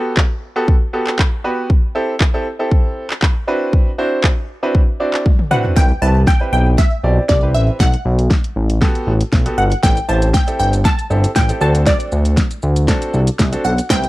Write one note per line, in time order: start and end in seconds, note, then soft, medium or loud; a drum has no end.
0.00 0.21 B3 medium
0.00 0.21 F#4 medium
0.00 0.21 G4 medium
0.00 0.21 A4 loud
0.17 kick loud
0.17 clap loud
0.56 0.73 B3 medium
0.56 0.73 F#4 medium
0.56 0.73 G4 medium
0.56 0.73 A4 loud
0.68 kick loud
0.93 1.17 B3 medium
0.93 1.17 F#4 medium
0.93 1.17 G4 medium
0.93 1.17 A4 medium
1.07 clap medium
1.19 kick loud
1.19 clap loud
1.44 1.68 B3 medium
1.44 1.68 F#4 medium
1.44 1.68 G4 medium
1.44 1.68 B4 medium
1.70 kick loud
1.95 2.13 C4 medium
1.95 2.13 E4 medium
1.95 2.13 G4 medium
1.95 2.13 A4 loud
2.20 kick loud
2.20 clap loud
2.34 2.45 C4 medium
2.34 2.45 E4 medium
2.34 2.45 G4 medium
2.34 2.45 A4 loud
2.59 3.06 C4 medium
2.59 3.06 E4 medium
2.59 3.06 G4 medium
2.59 3.06 A4 medium
2.71 kick loud
3.10 clap medium
3.22 kick loud
3.22 clap loud
3.48 3.89 C4 medium
3.48 3.89 D4 medium
3.48 3.89 E4 medium
3.48 3.89 F#4 medium
3.48 3.89 B4 loud
3.73 kick loud
3.98 4.28 C4 medium
3.98 4.28 D4 medium
3.98 4.28 E4 medium
3.98 4.28 F#4 medium
3.98 4.28 C5 loud
4.24 kick loud
4.24 clap loud
4.63 4.80 C4 medium
4.63 4.80 D4 medium
4.63 4.80 E4 medium
4.63 4.80 F#4 medium
4.63 4.80 B4 medium
4.75 kick loud
5.00 5.24 C4 medium
5.00 5.24 D4 medium
5.00 5.24 E4 medium
5.00 5.24 F#4 medium
5.00 5.24 D5 medium
5.14 clap medium
5.26 kick loud
5.26 high tom medium
5.39 mid tom medium
5.51 5.74 C4 medium
5.51 5.74 D4 medium
5.51 5.75 E4 medium
5.51 5.75 F#4 medium
5.51 5.75 B4 loud
5.51 5.62 F#5 loud
5.51 mid tom medium
5.65 floor tom medium
5.76 5.92 C2 loud
5.76 5.89 C4 medium
5.76 5.89 E4 medium
5.76 5.89 B4 medium
5.76 6.00 G5 loud
5.76 kick loud
5.76 snare soft
6.02 6.26 C2 loud
6.02 6.20 C4 medium
6.02 6.20 E4 medium
6.02 6.20 G4 medium
6.02 6.20 B4 medium
6.02 6.28 A5 loud
6.27 6.51 G5 loud
6.27 kick loud
6.27 snare medium
6.41 6.70 C4 medium
6.41 6.70 E4 medium
6.41 6.70 G4 medium
6.41 6.70 B4 medium
6.53 6.77 B1 medium
6.53 6.79 G5 loud
6.78 7.31 E5 medium
6.78 kick loud
6.78 snare medium
7.03 7.19 B1 medium
7.03 7.22 C4 medium
7.03 7.22 E4 medium
7.03 7.22 G4 medium
7.03 7.22 D5 medium
7.29 7.56 C2 medium
7.29 7.55 D5 medium
7.29 kick loud
7.29 snare medium
7.42 7.80 C4 medium
7.42 7.80 E4 medium
7.42 7.80 G4 medium
7.42 7.80 B4 medium
7.54 7.70 A1 medium
7.54 7.81 E5 medium
7.80 7.96 B1 loud
7.80 9.54 F#5 loud
7.80 kick loud
7.80 snare medium
7.94 closed hi-hat soft
8.05 8.29 B1 loud
8.19 closed hi-hat medium
8.30 kick loud
8.30 snare medium
8.44 closed hi-hat medium
8.56 8.80 A1 medium
8.70 closed hi-hat medium
8.81 9.11 B3 loud
8.81 9.11 F#4 medium
8.81 9.11 G4 medium
8.81 9.11 A4 loud
8.81 kick loud
8.81 snare medium
8.95 closed hi-hat soft
9.07 9.23 A1 loud
9.21 closed hi-hat medium
9.32 9.48 B1 medium
9.32 kick loud
9.32 snare medium
9.46 9.63 B3 medium
9.46 9.63 F#4 medium
9.46 9.63 G4 medium
9.46 9.63 A4 medium
9.46 closed hi-hat medium
9.58 9.74 G1 medium
9.58 9.84 F#5 medium
9.72 closed hi-hat medium
9.83 9.99 A1 loud
9.83 9.96 C4 medium
9.83 9.96 E4 medium
9.83 9.96 G4 medium
9.83 9.96 A4 medium
9.83 10.09 G5 loud
9.83 kick loud
9.83 snare medium
9.83 shaker medium
9.97 closed hi-hat soft
9.97 shaker soft
10.08 10.33 A1 loud
10.08 10.27 C4 medium
10.08 10.27 E4 medium
10.08 10.27 G4 medium
10.08 10.27 C5 medium
10.08 10.35 A5 loud
10.08 shaker medium
10.22 closed hi-hat medium
10.22 shaker medium
10.34 10.58 G5 loud
10.34 kick loud
10.34 snare medium
10.34 shaker medium
10.47 10.76 C4 medium
10.47 10.76 E4 medium
10.47 10.77 G4 medium
10.47 10.77 A4 medium
10.47 closed hi-hat medium
10.47 shaker medium
10.59 10.84 G1 medium
10.59 10.86 G5 loud
10.59 shaker medium
10.73 closed hi-hat medium
10.73 shaker medium
10.85 11.37 A5 loud
10.85 kick loud
10.85 snare medium
10.85 shaker medium
10.99 closed hi-hat soft
10.99 shaker soft
11.10 11.26 G1 medium
11.10 11.28 C4 medium
11.10 11.28 E4 medium
11.10 11.28 G4 medium
11.10 11.28 A4 medium
11.10 shaker medium
11.24 closed hi-hat medium
11.24 shaker medium
11.36 11.52 A1 medium
11.36 11.62 G5 loud
11.36 kick loud
11.36 snare medium
11.36 shaker medium
11.49 11.59 C4 medium
11.49 11.61 E4 medium
11.49 11.61 G4 medium
11.49 11.60 A4 medium
11.49 closed hi-hat medium
11.49 shaker medium
11.61 11.93 D2 medium
11.61 12.43 C4 medium
11.61 12.43 D4 medium
11.61 12.43 F#4 medium
11.61 12.43 A4 medium
11.61 11.88 A5 loud
11.61 shaker medium
11.75 closed hi-hat medium
11.75 shaker medium
11.86 13.61 D5 loud
11.86 kick loud
11.86 snare medium
11.86 shaker medium
12.00 closed hi-hat soft
12.00 shaker soft
12.12 12.36 D2 loud
12.12 shaker medium
12.25 closed hi-hat medium
12.25 shaker medium
12.37 kick loud
12.37 snare medium
12.37 shaker medium
12.51 closed hi-hat medium
12.51 shaker medium
12.62 12.87 D2 medium
12.62 shaker medium
12.76 closed hi-hat medium
12.76 shaker medium
12.88 13.18 C4 medium
12.88 13.18 D4 medium
12.88 13.18 F#4 medium
12.88 13.18 A4 loud
12.88 kick loud
12.88 snare medium
12.88 shaker medium
13.02 closed hi-hat soft
13.02 shaker soft
13.14 13.30 C2 medium
13.14 shaker medium
13.27 closed hi-hat medium
13.27 shaker medium
13.39 13.55 C2 loud
13.39 kick loud
13.39 snare medium
13.39 shaker medium
13.52 13.70 C4 medium
13.52 13.70 D4 medium
13.52 13.70 F#4 medium
13.52 13.70 A4 medium
13.52 closed hi-hat medium
13.52 shaker medium
13.64 13.80 B1 medium
13.64 13.88 F#5 medium
13.64 shaker medium
13.78 closed hi-hat medium
13.78 shaker medium
13.90 14.06 C2 loud
13.90 14.02 C4 medium
13.90 14.02 E4 medium
13.90 14.03 G4 medium
13.90 14.03 B4 medium
13.90 14.09 G5 loud
13.90 kick loud
13.90 snare medium
13.90 shaker medium
14.04 closed hi-hat soft
14.04 shaker soft